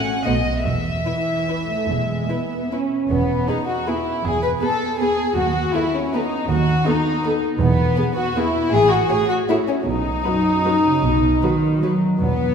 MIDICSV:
0, 0, Header, 1, 6, 480
1, 0, Start_track
1, 0, Key_signature, 4, "major"
1, 0, Tempo, 389105
1, 799, Time_signature, 3, 2, 24, 8
1, 799, Tempo, 409556
1, 3679, Tempo, 378788
1, 7519, Tempo, 369686
1, 11359, Tempo, 387847
1, 15631, End_track
2, 0, Start_track
2, 0, Title_t, "Violin section"
2, 0, Program_c, 0, 48
2, 0, Note_on_c, 0, 78, 61
2, 316, Note_on_c, 0, 75, 50
2, 325, Note_off_c, 0, 78, 0
2, 795, Note_on_c, 0, 76, 52
2, 796, Note_off_c, 0, 75, 0
2, 3173, Note_off_c, 0, 76, 0
2, 4155, Note_on_c, 0, 71, 36
2, 4257, Note_off_c, 0, 71, 0
2, 4654, Note_on_c, 0, 71, 35
2, 4756, Note_off_c, 0, 71, 0
2, 5588, Note_on_c, 0, 71, 35
2, 5689, Note_off_c, 0, 71, 0
2, 6088, Note_on_c, 0, 71, 35
2, 6190, Note_off_c, 0, 71, 0
2, 7019, Note_on_c, 0, 71, 39
2, 7120, Note_off_c, 0, 71, 0
2, 7519, Note_on_c, 0, 71, 41
2, 7623, Note_off_c, 0, 71, 0
2, 8458, Note_on_c, 0, 71, 43
2, 8562, Note_off_c, 0, 71, 0
2, 8945, Note_on_c, 0, 71, 43
2, 9049, Note_off_c, 0, 71, 0
2, 9895, Note_on_c, 0, 71, 47
2, 9999, Note_off_c, 0, 71, 0
2, 10408, Note_on_c, 0, 71, 42
2, 10512, Note_off_c, 0, 71, 0
2, 11360, Note_on_c, 0, 73, 43
2, 11459, Note_off_c, 0, 73, 0
2, 11849, Note_on_c, 0, 73, 34
2, 11948, Note_off_c, 0, 73, 0
2, 12782, Note_on_c, 0, 71, 35
2, 12881, Note_off_c, 0, 71, 0
2, 13280, Note_on_c, 0, 71, 33
2, 13379, Note_off_c, 0, 71, 0
2, 14242, Note_on_c, 0, 71, 32
2, 14341, Note_off_c, 0, 71, 0
2, 14752, Note_on_c, 0, 71, 31
2, 14851, Note_off_c, 0, 71, 0
2, 15631, End_track
3, 0, Start_track
3, 0, Title_t, "Violin section"
3, 0, Program_c, 1, 48
3, 317, Note_on_c, 1, 66, 34
3, 319, Note_on_c, 1, 72, 32
3, 415, Note_off_c, 1, 66, 0
3, 418, Note_off_c, 1, 72, 0
3, 1276, Note_on_c, 1, 71, 31
3, 1277, Note_on_c, 1, 64, 29
3, 1370, Note_off_c, 1, 71, 0
3, 1371, Note_off_c, 1, 64, 0
3, 1785, Note_on_c, 1, 64, 27
3, 1785, Note_on_c, 1, 71, 28
3, 1879, Note_off_c, 1, 64, 0
3, 1879, Note_off_c, 1, 71, 0
3, 2722, Note_on_c, 1, 64, 27
3, 2726, Note_on_c, 1, 71, 28
3, 2816, Note_off_c, 1, 64, 0
3, 2820, Note_off_c, 1, 71, 0
3, 3223, Note_on_c, 1, 71, 26
3, 3227, Note_on_c, 1, 64, 26
3, 3317, Note_off_c, 1, 71, 0
3, 3321, Note_off_c, 1, 64, 0
3, 3676, Note_on_c, 1, 59, 51
3, 4123, Note_off_c, 1, 59, 0
3, 4149, Note_on_c, 1, 63, 55
3, 4402, Note_off_c, 1, 63, 0
3, 4404, Note_on_c, 1, 66, 49
3, 4646, Note_off_c, 1, 66, 0
3, 4657, Note_on_c, 1, 64, 48
3, 5123, Note_on_c, 1, 68, 59
3, 5127, Note_off_c, 1, 64, 0
3, 5353, Note_off_c, 1, 68, 0
3, 5353, Note_on_c, 1, 71, 53
3, 5449, Note_off_c, 1, 71, 0
3, 5600, Note_on_c, 1, 69, 61
3, 6076, Note_off_c, 1, 69, 0
3, 6085, Note_on_c, 1, 68, 60
3, 6540, Note_off_c, 1, 68, 0
3, 6553, Note_on_c, 1, 66, 59
3, 7016, Note_off_c, 1, 66, 0
3, 7024, Note_on_c, 1, 64, 63
3, 7275, Note_off_c, 1, 64, 0
3, 7283, Note_on_c, 1, 61, 55
3, 7517, Note_on_c, 1, 63, 56
3, 7524, Note_off_c, 1, 61, 0
3, 7987, Note_off_c, 1, 63, 0
3, 7990, Note_on_c, 1, 66, 67
3, 8455, Note_off_c, 1, 66, 0
3, 8461, Note_on_c, 1, 63, 64
3, 9192, Note_off_c, 1, 63, 0
3, 9425, Note_on_c, 1, 59, 71
3, 10106, Note_off_c, 1, 59, 0
3, 10157, Note_on_c, 1, 66, 65
3, 10407, Note_off_c, 1, 66, 0
3, 10408, Note_on_c, 1, 64, 67
3, 10877, Note_off_c, 1, 64, 0
3, 10878, Note_on_c, 1, 68, 85
3, 11110, Note_off_c, 1, 68, 0
3, 11114, Note_on_c, 1, 66, 65
3, 11361, Note_off_c, 1, 66, 0
3, 11366, Note_on_c, 1, 68, 68
3, 11604, Note_on_c, 1, 66, 55
3, 11605, Note_off_c, 1, 68, 0
3, 11699, Note_off_c, 1, 66, 0
3, 11852, Note_on_c, 1, 64, 59
3, 11944, Note_off_c, 1, 64, 0
3, 12080, Note_on_c, 1, 61, 50
3, 12171, Note_off_c, 1, 61, 0
3, 12314, Note_on_c, 1, 63, 64
3, 14939, Note_off_c, 1, 63, 0
3, 15210, Note_on_c, 1, 59, 56
3, 15631, Note_off_c, 1, 59, 0
3, 15631, End_track
4, 0, Start_track
4, 0, Title_t, "Viola section"
4, 0, Program_c, 2, 48
4, 321, Note_on_c, 2, 57, 34
4, 321, Note_on_c, 2, 59, 35
4, 420, Note_off_c, 2, 57, 0
4, 420, Note_off_c, 2, 59, 0
4, 1290, Note_on_c, 2, 52, 36
4, 1980, Note_off_c, 2, 52, 0
4, 2028, Note_on_c, 2, 57, 34
4, 2253, Note_off_c, 2, 57, 0
4, 2255, Note_on_c, 2, 56, 33
4, 2730, Note_off_c, 2, 56, 0
4, 2735, Note_on_c, 2, 59, 38
4, 3220, Note_on_c, 2, 61, 35
4, 3225, Note_off_c, 2, 59, 0
4, 3669, Note_off_c, 2, 61, 0
4, 4156, Note_on_c, 2, 68, 32
4, 4159, Note_on_c, 2, 59, 30
4, 4258, Note_off_c, 2, 68, 0
4, 4260, Note_off_c, 2, 59, 0
4, 4655, Note_on_c, 2, 59, 34
4, 4658, Note_on_c, 2, 68, 35
4, 4756, Note_off_c, 2, 59, 0
4, 4759, Note_off_c, 2, 68, 0
4, 5592, Note_on_c, 2, 68, 36
4, 5597, Note_on_c, 2, 59, 35
4, 5694, Note_off_c, 2, 68, 0
4, 5698, Note_off_c, 2, 59, 0
4, 6079, Note_on_c, 2, 59, 35
4, 6084, Note_on_c, 2, 68, 36
4, 6180, Note_off_c, 2, 59, 0
4, 6185, Note_off_c, 2, 68, 0
4, 7019, Note_on_c, 2, 69, 39
4, 7020, Note_on_c, 2, 59, 36
4, 7121, Note_off_c, 2, 59, 0
4, 7121, Note_off_c, 2, 69, 0
4, 7521, Note_on_c, 2, 59, 40
4, 7522, Note_on_c, 2, 69, 41
4, 7625, Note_off_c, 2, 59, 0
4, 7626, Note_off_c, 2, 69, 0
4, 8463, Note_on_c, 2, 69, 42
4, 8466, Note_on_c, 2, 59, 43
4, 8567, Note_off_c, 2, 69, 0
4, 8570, Note_off_c, 2, 59, 0
4, 8961, Note_on_c, 2, 59, 44
4, 8961, Note_on_c, 2, 69, 47
4, 9064, Note_off_c, 2, 69, 0
4, 9065, Note_off_c, 2, 59, 0
4, 9914, Note_on_c, 2, 59, 43
4, 9914, Note_on_c, 2, 68, 44
4, 10018, Note_off_c, 2, 59, 0
4, 10018, Note_off_c, 2, 68, 0
4, 10417, Note_on_c, 2, 59, 48
4, 10420, Note_on_c, 2, 68, 44
4, 10521, Note_off_c, 2, 59, 0
4, 10524, Note_off_c, 2, 68, 0
4, 11364, Note_on_c, 2, 66, 39
4, 11365, Note_on_c, 2, 57, 38
4, 11463, Note_off_c, 2, 66, 0
4, 11464, Note_off_c, 2, 57, 0
4, 11843, Note_on_c, 2, 66, 39
4, 11847, Note_on_c, 2, 57, 39
4, 11942, Note_off_c, 2, 66, 0
4, 11946, Note_off_c, 2, 57, 0
4, 12796, Note_on_c, 2, 54, 32
4, 12797, Note_on_c, 2, 66, 33
4, 12895, Note_off_c, 2, 54, 0
4, 12896, Note_off_c, 2, 66, 0
4, 13292, Note_on_c, 2, 66, 34
4, 13296, Note_on_c, 2, 54, 35
4, 13391, Note_off_c, 2, 66, 0
4, 13395, Note_off_c, 2, 54, 0
4, 14245, Note_on_c, 2, 54, 29
4, 14247, Note_on_c, 2, 66, 31
4, 14344, Note_off_c, 2, 54, 0
4, 14346, Note_off_c, 2, 66, 0
4, 14742, Note_on_c, 2, 54, 33
4, 14745, Note_on_c, 2, 66, 32
4, 14841, Note_off_c, 2, 54, 0
4, 14844, Note_off_c, 2, 66, 0
4, 15631, End_track
5, 0, Start_track
5, 0, Title_t, "Cello section"
5, 0, Program_c, 3, 48
5, 323, Note_on_c, 3, 47, 44
5, 700, Note_off_c, 3, 47, 0
5, 802, Note_on_c, 3, 40, 40
5, 1177, Note_off_c, 3, 40, 0
5, 2249, Note_on_c, 3, 40, 39
5, 2624, Note_off_c, 3, 40, 0
5, 3678, Note_on_c, 3, 40, 47
5, 4055, Note_off_c, 3, 40, 0
5, 5125, Note_on_c, 3, 40, 50
5, 5493, Note_off_c, 3, 40, 0
5, 6550, Note_on_c, 3, 39, 53
5, 6921, Note_off_c, 3, 39, 0
5, 7981, Note_on_c, 3, 39, 60
5, 8358, Note_off_c, 3, 39, 0
5, 9423, Note_on_c, 3, 40, 63
5, 9798, Note_off_c, 3, 40, 0
5, 10877, Note_on_c, 3, 45, 57
5, 11254, Note_off_c, 3, 45, 0
5, 12303, Note_on_c, 3, 47, 50
5, 12681, Note_off_c, 3, 47, 0
5, 12782, Note_on_c, 3, 42, 40
5, 13479, Note_off_c, 3, 42, 0
5, 13532, Note_on_c, 3, 49, 42
5, 13764, Note_off_c, 3, 49, 0
5, 13770, Note_on_c, 3, 47, 40
5, 14245, Note_on_c, 3, 51, 44
5, 14246, Note_off_c, 3, 47, 0
5, 14733, Note_off_c, 3, 51, 0
5, 14739, Note_on_c, 3, 54, 38
5, 15209, Note_on_c, 3, 40, 49
5, 15212, Note_off_c, 3, 54, 0
5, 15578, Note_off_c, 3, 40, 0
5, 15631, End_track
6, 0, Start_track
6, 0, Title_t, "Double bass section"
6, 0, Program_c, 4, 48
6, 322, Note_on_c, 4, 35, 45
6, 699, Note_off_c, 4, 35, 0
6, 799, Note_on_c, 4, 28, 43
6, 1175, Note_off_c, 4, 28, 0
6, 2250, Note_on_c, 4, 28, 37
6, 2624, Note_off_c, 4, 28, 0
6, 3677, Note_on_c, 4, 28, 46
6, 4054, Note_off_c, 4, 28, 0
6, 5125, Note_on_c, 4, 28, 44
6, 5493, Note_off_c, 4, 28, 0
6, 6552, Note_on_c, 4, 39, 47
6, 6922, Note_off_c, 4, 39, 0
6, 7991, Note_on_c, 4, 39, 51
6, 8363, Note_off_c, 4, 39, 0
6, 9420, Note_on_c, 4, 28, 56
6, 9796, Note_off_c, 4, 28, 0
6, 10873, Note_on_c, 4, 33, 54
6, 11252, Note_off_c, 4, 33, 0
6, 12306, Note_on_c, 4, 35, 48
6, 12683, Note_off_c, 4, 35, 0
6, 13758, Note_on_c, 4, 35, 44
6, 14136, Note_off_c, 4, 35, 0
6, 15215, Note_on_c, 4, 28, 46
6, 15581, Note_off_c, 4, 28, 0
6, 15631, End_track
0, 0, End_of_file